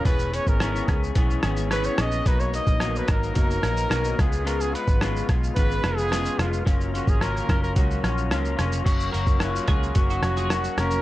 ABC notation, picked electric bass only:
X:1
M:4/4
L:1/16
Q:1/4=109
K:F#
V:1 name="Picked electric bass" clef=bass
=E,,,3 G,,,3 C,,2 B,,,2 G,,,4 A,,,2 | B,,,3 A,,,3 G,,,2 F,,,2 A,,,2 B,,,2 C,,2- | C,,3 G,,,3 B,,,2 G,,,2 E,,,4 E,,,2 | F,,,3 G,,,3 F,,,2 C,,2 A,,,2 C,,2 E,,,2 |
F,,,2 F,,,4 C,,2 F,,,2 E,,,4 E,,,2 |]